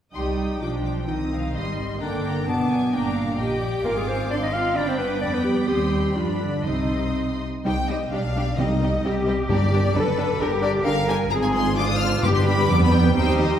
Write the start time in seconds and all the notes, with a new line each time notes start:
0.13 C2 G3 D#4 G4 G5 C6 D#6
0.38 G5
0.60 B1 F3 D4 F4 D6
0.85 D6
1.07 C2 D#3 C4 D#4 G5 D#6
1.31 F5
1.53 G#1 G3 D#5 C6 D#6
1.78 C6
2.00 G1 D3 A#3 D4 G5 A#5 D6
2.25 A#5
2.46 F#1 B2 B3 D4 A5 D6
2.70 G#5
2.92 G1 A#2 A#3 D4 G5 A#5 D6
3.16 F5
3.38 A#1 G4 D#5 G5 D6
3.62 D5
3.84 G#1 A#3 F4 A#4 F5 G#5
3.96 G#3 G#4
4.07 C4 C5
4.29 G#1 C4 D4 D5 C6
4.41 D#4 D#5
4.53 F4 F5
4.75 G1 D4 D5 G5 B5 D6
4.88 C4 C5
4.98 B3 B4
5.21 F2 B3 D4 D5 G5 B5
5.33 B3 B4
5.44 G3 G4
5.68 D#2 G3 C4 G4 G5 C6 D#6
5.93 B5
6.15 G2 F3 D4 F4 D5 B5
6.40 D3 D4
6.65 C2 C3 C4 D#4 D#5 C6 D#6
7.65 C2 G3 D#4 G4 C5 G5
7.89 G3 D#4 G4 C5 D#5
8.12 B1 G3 D4 G4 D5 F5
8.36 G3 D4 G4 D5
8.58 C2 C3 G3 C4 D#4 G4 D#5
8.81 G3 C4 G4 D#5
9.04 C2 G3 C4 G4 D#5
9.27 G3 C4 G4 D#5
9.49 G1 G2 G3 D4 G4 A#4 D5
9.73 G3 D4 G4 A#4
9.95 F#1 D3 D4 A4 B4
10.17 D3 D4 A4
10.39 G1 D3 D4 G4 A#4
10.62 D3 D4 G4 A#4 D5
10.84 G1 D3 D4 G4 A#4 F5
11.08 D3 D4 G4 A#4 G#5
11.30 G#1 F3 C4 F4 G#4 A#5
11.43 G#5
11.54 C6
11.76 D3 D4 F4 C5 D6
11.89 D#6
11.99 F6
12.22 G1 G2 G3 G4 B4 D6
12.36 C6
12.46 B5
12.69 F2 B3 D6
12.83 B5
12.93 G5
13.16 D#2 G3 C4 D#4 G4 C5 G5
13.40 D#5